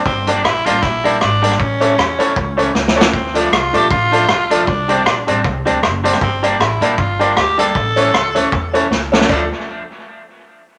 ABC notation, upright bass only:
X:1
M:4/4
L:1/8
Q:"Swing" 1/4=156
K:Dm
V:1 name="Upright bass" clef=bass
G,,,2 B,,, A,,, B,,,2 ^G,,,2 | A,,,2 E,,2 ^C,,2 C,,2 | D,,2 C,, B,,, A,,,2 =B,,,2 | C,,2 B,,, A,,, C,, D,, ^F,,,2 |
G,,,2 A,,, B,,, G,,,2 D,,2 | A,,,2 ^C,, D,, E,,2 C,,2 | D,, z6 z |]